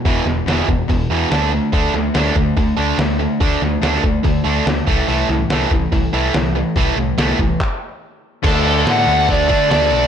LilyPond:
<<
  \new Staff \with { instrumentName = "Lead electric guitar" } { \time 4/4 \key d \mixolydian \tempo 4 = 143 r1 | r1 | r1 | r1 |
r1 | a'4 fis''4 d''4 d''4 | }
  \new Staff \with { instrumentName = "Distorted electric guitar" } { \time 4/4 \key d \mixolydian r1 | r1 | r1 | r1 |
r1 | <d a d'>8 <d a d'>8 <d a d'>8 <d a d'>8 <d a d'>8 <d a d'>8 <d a d'>8 <d a d'>8 | }
  \new Staff \with { instrumentName = "Distorted electric guitar" } { \clef bass \time 4/4 \key d \mixolydian <e, b, e>8 <e, b,>8 <e, b, e>8 <e, b,>8 <e, b,>8 <e, b, e>8 <d a d'>8 <d a>8 | <d a d'>8 <d a>8 <d a d'>8 <d a>8 <d a>8 <d a d'>8 <d a>8 <d a>8 | <d a d'>8 <d a>8 <d a d'>8 <d a>8 <d a>8 <d a d'>8 <d a>8 <a, e a>8 | <a, e a>8 <a, e>8 <a, e a>8 <a, e>8 <a, e>8 <a, e a>8 <a, e>8 <a, e>8 |
<a, e a>8 <a, e>8 <a, e a>8 <a, e>8 r2 | <d a d'>2~ <d a d'>8 <d a d'>8 <d a d'>4 | }
  \new Staff \with { instrumentName = "Overdriven electric guitar" } { \clef bass \time 4/4 \key d \mixolydian <e, b, e>8 <e, b,>8 <e, b, e>8 <e, b,>8 <e, b,>8 <e, b, e>8 <d a d'>8 <d a>8 | <d a d'>8 <d a>8 <d a d'>8 <d a>8 <d a>8 <d a d'>8 <d a>8 <d a>8 | <d a d'>8 <d a>8 <d a d'>8 <d a>8 <d a>8 <d a d'>8 <d a>8 <a, e a>8 | <a, e a>8 <a, e>8 <a, e a>8 <a, e>8 <a, e>8 <a, e a>8 <a, e>8 <a, e>8 |
<a, e a>8 <a, e>8 <a, e a>8 <a, e>8 r2 | <d a d'>2~ <d a d'>8 <d a d'>8 <d a d'>4 | }
  \new Staff \with { instrumentName = "Picked electric bass" } { \clef bass \time 4/4 \key d \mixolydian e,,8 e,,8 e,,8 e,,8 e,,8 e,8 d,4 | d,8 d,8 d,8 d,8 d,8 d,8 d,4 | d,8 d,8 d,8 d,8 d,8 d,8 d,8 c,8 | c,8 c,8 c,8 c,8 c,8 c,8 c,4 |
c,8 c,8 c,8 c,8 r2 | d,4 a,8 d,8 d,8 d8 d,8 b,,8 | }
  \new DrumStaff \with { instrumentName = "Drums" } \drummode { \time 4/4 <hho bd>8 sn8 <hho sn>16 sn16 bd8 <hho bd>4 <hho sn>4 | <hho bd>8 sn8 <hho sn>16 sn16 bd8 <hho bd>4 <hho sn>4 | <hho bd>8 sn8 <hho sn>16 sn16 bd8 <hho bd>4 <hho sn>8 bd8 | hho8 sn8 <hho sn>16 sn16 bd8 <hho bd>4 <hho sn>4 |
<hho bd>4 <hho sn>16 sn16 bd8 <hc bd>4 r4 | <cymc hho bd>4 <hho sn>16 sn8. <hho bd>8 bd8 <hho sn>16 sn8. | }
>>